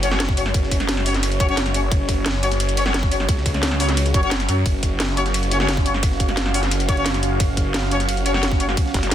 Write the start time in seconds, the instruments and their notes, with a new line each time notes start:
Already playing: detuned saw bass F#1, analog synth pad C#4 F#4 C#5
0.03 brass ensemble C#4 F#4 C#5, closed hi-hat, ride
0.11 brass ensemble C#4 F#4 C#5, snare
0.20 snare, closed hi-hat, ride
0.29 kick
0.37 brass ensemble C#4 F#4 C#5, closed hi-hat, ride
0.46 snare
0.54 detuned saw bass F#1, kick, closed hi-hat, ride
0.63 snare
0.71 kick, closed hi-hat, ride
0.80 snare, ride
0.89 snare, closed hi-hat, ride
0.97 snare
1.06 brass ensemble C#4 F#4 C#5, snare, open hi-hat, ride
1.14 snare, closed hi-hat
1.23 closed hi-hat, ride
1.32 closed hi-hat
1.40 brass ensemble C#4 F#4 C#5, kick, closed hi-hat, ride
1.49 brass ensemble C#4 F#4 C#5, ride
1.57 snare, closed hi-hat, ride
1.66 snare, closed hi-hat
1.74 brass ensemble C#4 F#4 C#5, closed hi-hat, ride
1.92 detuned saw bass F#1, kick, closed hi-hat, ride
2.09 kick, closed hi-hat, ride
2.26 snare, closed hi-hat, ride
2.34 snare
2.43 brass ensemble C#4 F#4 C#5, closed hi-hat, ride
2.51 snare, closed hi-hat
2.60 closed hi-hat, ride
2.69 closed hi-hat
2.77 brass ensemble C#4 F#4 C#5, closed hi-hat, ride
2.86 brass ensemble C#4 F#4 C#5, snare
2.94 snare, closed hi-hat, ride
3.03 kick
3.11 brass ensemble C#4 F#4 C#5, closed hi-hat, ride
3.20 snare
3.29 detuned saw bass C#2, kick, closed hi-hat, ride
3.37 snare
3.46 kick, closed hi-hat, ride
3.54 snare, ride
3.63 snare, closed hi-hat, ride
3.71 snare
3.80 brass ensemble C#4 F#4 C#5, snare, open hi-hat, ride
3.89 snare, closed hi-hat
3.97 closed hi-hat, ride
4.06 closed hi-hat
4.14 detuned saw bass F#1, brass ensemble C#4 F#4 C#5, kick, closed hi-hat, ride
4.23 brass ensemble C#4 F#4 C#5, ride
4.31 snare, closed hi-hat, ride
4.40 snare, closed hi-hat
4.49 detuned saw bass F#2, brass ensemble C#4 F#4 C#5, closed hi-hat, ride
4.66 detuned saw bass F#1, analog synth pad F5, kick, closed hi-hat, ride
4.83 kick, closed hi-hat, ride
5.00 snare, closed hi-hat, ride
5.09 snare
5.17 brass ensemble C#4 F#4 C#5, closed hi-hat, ride
5.26 snare, closed hi-hat
5.34 closed hi-hat, ride
5.43 closed hi-hat
5.51 brass ensemble C#4 F#4 C#5, closed hi-hat, ride
5.60 brass ensemble C#4 F#4 C#5, snare
5.69 snare, closed hi-hat, ride
5.77 kick
5.86 brass ensemble C#4 F#4 C#5, closed hi-hat, ride
5.94 snare
6.03 detuned saw bass F#1, kick, closed hi-hat, ride
6.11 snare
6.20 kick, closed hi-hat, ride
6.29 snare, ride
6.37 snare, closed hi-hat, ride
6.46 snare
6.54 brass ensemble C#4 F#4 C#5, snare, open hi-hat, ride
6.63 snare, closed hi-hat
6.71 closed hi-hat, ride
6.80 closed hi-hat
6.89 brass ensemble C#4 F#4 C#5, kick, closed hi-hat, ride
6.97 brass ensemble C#4 F#4 C#5, ride
7.06 snare, closed hi-hat, ride
7.14 snare, closed hi-hat
7.23 closed hi-hat, ride
7.40 detuned saw bass F#1, kick, closed hi-hat, ride
7.57 kick, closed hi-hat, ride
7.74 snare, closed hi-hat, ride
7.83 snare
7.91 brass ensemble C#4 F#4 C#5, closed hi-hat, ride
8.00 snare, closed hi-hat
8.09 closed hi-hat, ride
8.17 closed hi-hat
8.26 brass ensemble C#4 F#4 C#5, closed hi-hat, ride
8.34 brass ensemble C#4 F#4 C#5, snare
8.43 snare, closed hi-hat, ride
8.51 kick, snare
8.60 brass ensemble C#4 F#4 C#5, closed hi-hat, ride
8.69 snare
8.77 kick, closed hi-hat, ride
8.86 snare
8.94 wobble bass F#1, kick, snare, closed hi-hat, ride
9.03 snare, closed hi-hat
9.12 wobble bass G#1, snare, closed hi-hat, ride